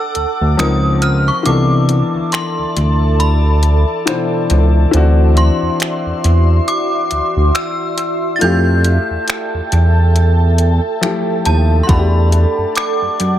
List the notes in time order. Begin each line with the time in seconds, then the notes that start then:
Already playing: D4 F#4 G4 A4 F#5 A5 D6 E6
0.15 D2, closed hi-hat
0.41 D2
0.57 C#2 F3 C4 D#4 A#4 D#6, finger snap, closed hi-hat
1.02 F6, closed hi-hat
1.28 C#6
1.43 C2 E3 B3 D4 A4 D5 E5 A5 D6, closed hi-hat
1.48 A4
1.89 closed hi-hat
2.15 D2
2.32 C6, finger snap, closed hi-hat
2.58 D2
2.76 D2, closed hi-hat
3.20 B5, closed hi-hat
3.63 closed hi-hat
4.06 B2 E3 D4 C5, finger snap, closed hi-hat
4.50 C#2, closed hi-hat
4.91 D2 E3 C4 D4 F#4 C6, closed hi-hat
4.97 F#4
5.37 C6, closed hi-hat
5.62 E2
5.80 finger snap, closed hi-hat
6.06 E2
6.24 E2, closed hi-hat
6.68 D6, closed hi-hat
7.11 D2, closed hi-hat
7.36 D2
7.55 E6, finger snap, closed hi-hat
7.98 closed hi-hat
8.36 F4 A6
8.41 F2 A3 E4 G4 A4 G5 A5 G6, closed hi-hat
8.84 closed hi-hat
9.11 E2
9.28 finger snap, closed hi-hat
9.54 E2
9.72 E2, closed hi-hat
10.16 closed hi-hat
10.58 closed hi-hat
11.01 F3 A3 E4 G4, finger snap, closed hi-hat
11.45 D#2 A5, closed hi-hat
11.83 F#4 C6
11.89 E2 A3 D4 F#4 D5 F#5 B5, kick, closed hi-hat
11.99 G4
12.32 closed hi-hat
12.58 F#2
12.76 D6, finger snap, closed hi-hat
13.02 F#2
13.20 F#2, closed hi-hat